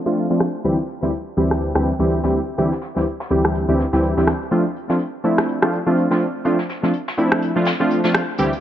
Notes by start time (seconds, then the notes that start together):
0.06 F3 A3 C4 D4 F4
0.17 closed hi-hat
0.30 F3 A3 C4 D4 F4, snare
0.40 cross-stick, closed hi-hat
0.64 D2 E3 G3 C4 E4 G4, closed hi-hat
0.79 closed hi-hat
0.89 closed hi-hat
1.02 D2 E3 G3 C4 E4 G4, snare
1.12 closed hi-hat
1.37 D2 E3 G3 C4 E4 G4, closed hi-hat
1.51 cross-stick, snare
1.61 closed hi-hat
1.75 D2 E3 G3 C4 E4 G4, cross-stick
1.85 closed hi-hat
1.99 D2 E3 G3 C4 E4 G4, closed hi-hat
2.10 closed hi-hat
2.23 D2 E3 G3 C4 E4 G4, snare
2.33 closed hi-hat
2.58 D2 E3 G3 C4 E4 G4, closed hi-hat
2.72 snare
2.81 snare, closed hi-hat
2.96 D2 E3 G3 C4 E4 G4, snare
3.07 closed hi-hat
3.20 snare
3.30 D2 E3 G3 C4 E4 G4, closed hi-hat
3.45 cross-stick
3.55 closed hi-hat
3.68 D2 E3 G3 C4 E4 G4
3.79 snare, closed hi-hat
3.93 D2 E3 G3 C4 E4 G4, snare
4.03 closed hi-hat
4.17 D2 E3 G3 C4 E4 G4, snare
4.27 cross-stick, snare, closed hi-hat
4.42 closed hi-hat
4.51 F3 A3 C4 D4 F4, closed hi-hat
4.66 closed hi-hat
4.76 closed hi-hat
4.89 F3 A3 C4 D4 F4, snare
4.99 closed hi-hat
5.24 F3 A3 C4 D4 E4, closed hi-hat
5.38 cross-stick, snare
5.48 closed hi-hat
5.62 F3 A3 C4 D4 F4, cross-stick
5.73 closed hi-hat
5.86 F3 A3 C4 D4 F4, closed hi-hat
5.97 closed hi-hat
6.10 F3 A3 C4 D4 F4, snare
6.21 closed hi-hat
6.45 F3 A3 C4 D4 F4, closed hi-hat
6.59 snare
6.69 snare, closed hi-hat
6.83 F3 A3 C4 D4 F4, snare
6.93 closed hi-hat
7.08 snare
7.17 F3 A3 C4 D4 E4, closed hi-hat
7.32 cross-stick
7.42 closed hi-hat
7.56 F3 A3 C4 D4 F4
7.65 snare, closed hi-hat
7.80 F3 A3 C4 D4 F4
7.91 closed hi-hat
8.04 F3 A3 C4 D4 F4, snare
8.14 cross-stick, closed hi-hat
8.38 D2 E3 G3 C4 E4 G4, closed hi-hat
8.52 closed hi-hat